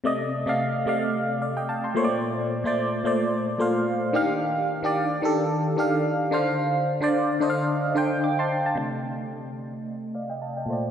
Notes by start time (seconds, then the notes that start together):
0.04 C3 A3 D5 D#5
0.46 C3 A3 D5 F5
0.86 C3 A3 D5 F5
1.42 D5 F5
1.57 D#5 G5
1.69 F5 A5
1.84 A5 C6
1.95 A#2 A3 C5 C#5
2.04 D5
2.64 A#2 A3 C5 D5
3.04 A#2 A3 C5 D5
3.58 A#2 A3 C5 F5
4.13 D#3 D4 G4 F5
4.83 D#3 D4 G4 D5
5.22 D#3 D4 G4 A4
5.77 D#3 D4 G4 F5
6.31 D3 D4 C5 F5
7.01 D3 D4 C5 D5
7.40 D3 D4 C5 D#5
7.50 F5
7.95 D3 D4 C5 G5
8.24 D6
8.39 A5 C6
8.66 F5 A5
8.75 C3 A3
8.79 D5 D#5
10.15 D5 F5
10.29 D#5 G5
10.42 F5 A5
10.57 D#5 G5
10.66 A#2 A3
10.70 C5 D5